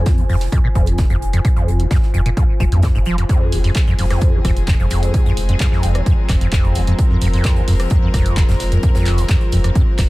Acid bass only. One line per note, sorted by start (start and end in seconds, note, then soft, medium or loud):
0.00 0.20 F2 medium
0.18 0.24 D#2 medium
0.29 0.36 F2 loud
0.52 0.59 F2 medium
0.64 0.68 A#2 loud
0.75 1.00 F2 medium
0.98 1.05 D#2 medium
1.10 1.16 F2 loud
1.33 1.40 F2 loud
1.45 1.49 A#2 loud
1.56 1.81 F2 medium
1.79 1.86 D#2 medium
1.91 1.97 F2 loud
2.14 2.20 F2 loud
2.26 2.29 A#2 loud
2.37 2.43 F2 medium
2.60 2.64 F3 medium
2.72 2.81 G2 medium
2.83 2.87 C3 medium
2.95 2.99 G#2 loud
3.06 3.16 F3 loud
3.18 3.24 F2 medium
3.29 3.54 F2 medium
3.52 3.59 D#2 medium
3.64 3.70 F2 loud
3.87 3.93 F2 loud
3.99 4.05 F2 medium
4.10 4.35 F2 medium
4.33 4.40 D#2 medium
4.45 4.51 F2 loud
4.68 4.74 F2 medium
4.80 4.86 F2 medium
4.91 5.15 F2 medium
5.14 5.20 D#2 medium
5.26 5.32 F2 loud
5.49 5.55 F2 loud
5.60 5.67 F2 medium
5.72 5.97 F2 medium
5.95 6.01 D#2 medium
6.06 6.13 F2 loud
6.29 6.36 F2 loud
6.41 6.47 F2 medium
6.52 6.77 F2 medium
6.75 6.82 D#2 medium
6.87 6.93 F2 loud
7.10 7.17 F2 loud
7.22 7.28 F2 medium
7.33 7.58 F2 medium
7.56 7.63 D#2 medium
7.68 7.74 F2 loud
7.91 7.97 F2 loud
8.03 8.09 F2 medium
8.14 8.39 F2 medium
8.37 8.44 D#2 medium
8.49 8.55 F2 loud
8.72 8.78 F2 loud
8.83 8.90 F2 medium
8.95 9.20 F2 medium
9.18 9.24 D#2 medium
9.29 9.36 F2 loud
9.52 9.59 F2 loud
9.64 9.70 F2 medium
9.75 9.82 F2 medium
9.98 10.02 F2 medium